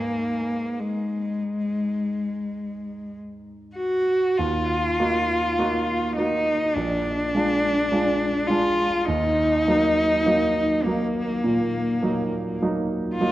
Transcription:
Already playing: grand piano G#2 B4 D#5 G#5, cello A#3
0.79 cello G#3
3.76 cello F#4
4.37 grand piano D#2, cello F4
5.00 grand piano A#3 D#4 F#4
5.59 grand piano A#3 D#4 F#4
6.16 grand piano A#3 D#4 F#4, cello D#4
6.73 grand piano A#1, cello D4
7.35 grand piano G#3 D4 F4
7.92 grand piano G#3 D4 F4
8.47 grand piano G#3 D4 F4, cello F4
9.05 grand piano D#2, cello D#4
9.68 grand piano F#3 A#3 D#4
10.26 grand piano F#3 A#3 D#4
10.83 grand piano F#3 A#3 D#4, cello A#3
11.44 grand piano A#2
12.02 grand piano F#3 A#3 D#4
12.62 grand piano F#3 A#3 D#4
13.15 cello F4
13.20 grand piano F#3 A#3 D#4

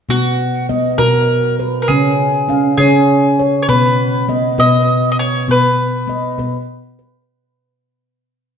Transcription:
0.09 handpan B2 B3, mandolin F#4
0.69 handpan B3 D#5
0.98 handpan B2 B3 F#4, mandolin A#4
1.59 handpan B4
1.82 mandolin A#4
1.88 handpan C#3 C#4, mandolin G#4
2.49 handpan C#4 F5
2.77 handpan C#3 C#4 C#5, mandolin G#4
3.39 handpan C#5
3.62 mandolin C#5
3.69 handpan B2 B3, mandolin B4
4.28 handpan B3 D#5
4.58 handpan B2 B3 B4, mandolin D#5
5.12 mandolin D#5
5.19 mandolin C#5
5.48 handpan B2 B3, mandolin B4
6.08 handpan B3 D#5
6.38 handpan B2 B3 B4
6.99 handpan B4

